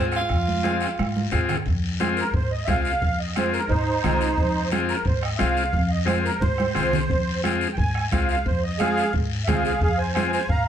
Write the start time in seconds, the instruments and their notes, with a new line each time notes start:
Already playing: upright bass G#2, transistor combo organ C4 F4 G#4
0.12 bombo rim, short guiro
0.16 tenor saxophone F4
0.29 upright bass F2, bombo low, bombo rim, high conga, long guiro
0.48 high conga
0.63 transistor combo organ C4 F4 G#4, bombo rim, high conga, short guiro
0.80 bombo rim, short guiro
0.98 upright bass G#2, bombo rim, high conga, long guiro
1.16 high conga
1.31 upright bass G#2, transistor combo organ C4 F4 G#4, bombo low, bombo rim, short guiro
1.49 bombo rim, low conga, short guiro
1.66 upright bass F2, bombo low, high conga, long guiro
2.00 transistor combo organ C4 F4 G#4, bombo rim, high conga, short guiro
2.17 accordion A#4, short guiro
2.34 upright bass G#2, accordion C5, bombo low, high conga, long guiro
2.51 accordion D#5
2.65 upright bass C2, transistor combo organ C4 F4 G#4, accordion E5, bombo low, bombo rim, short guiro
2.69 accordion F5, high conga
2.85 short guiro
3.02 upright bass F2, bombo low, high conga, long guiro
3.20 accordion D#5
3.36 transistor combo organ C4 F4 G#4, accordion C5, bombo rim, high conga, short guiro
3.53 accordion A#4, short guiro
3.69 upright bass G#2, accordion D#4 C5, bombo low, high conga, long guiro
4.04 upright bass C2, transistor combo organ C4 F4 G#4, bombo rim, high conga, low conga, short guiro
4.21 short guiro
4.37 upright bass F2, bombo low, long guiro
4.71 transistor combo organ C4 F4 G#4, bombo rim, high conga, short guiro
4.89 accordion A#4, short guiro
5.05 upright bass G#2, accordion C5, bombo low, high conga, long guiro
5.23 accordion D#5, bombo rim
5.36 transistor combo organ C4 F4 G#4, accordion E5, bombo rim, high conga, short guiro
5.40 upright bass C2, accordion F5
5.57 short guiro
5.73 upright bass F2, bombo low, high conga, long guiro
5.91 accordion D#5
6.05 transistor combo organ C4 F4 G#4, accordion C5, bombo rim, high conga, short guiro
6.25 accordion A#4, short guiro
6.41 upright bass G#2, accordion C5, bombo low, high conga, long guiro
6.58 bombo rim, high conga
6.75 upright bass C2, transistor combo organ C4 F4 G#4, bombo rim, low conga, short guiro
6.93 low conga, short guiro
7.10 upright bass F2, bombo low, high conga, long guiro
7.44 transistor combo organ C4 F4 G#4, bombo rim, high conga, short guiro
7.61 short guiro
7.73 accordion G5, long guiro
7.78 upright bass G#2, accordion G#5, bombo low, high conga
7.95 bombo rim
8.12 upright bass C2, transistor combo organ C4 F4 G#4, accordion F5, bombo low, bombo rim, high conga, short guiro
8.29 accordion F5, short guiro
8.46 upright bass F2, accordion C5, bombo low, high conga, long guiro
8.64 accordion D#5
8.79 transistor combo organ C4 F4 G#4, accordion G#4 F5, bombo rim, high conga, short guiro
8.97 short guiro
9.13 upright bass G#2, bombo low, long guiro
9.45 upright bass C2, transistor combo organ C4 F4 G#4, accordion G#4 E5, bombo low, bombo rim, high conga, low conga, short guiro
9.49 accordion F5
9.65 accordion G#4 F5, short guiro
9.81 upright bass F2, accordion G#4 F5, bombo low, high conga, long guiro
9.98 accordion C5 G#5
10.14 transistor combo organ C4 F4 G#4, accordion C5 G#5, bombo rim, high conga, short guiro
10.33 accordion C5 G#5, short guiro
10.49 upright bass G#2, accordion F5 A#5, bombo low, high conga, long guiro
10.65 accordion F5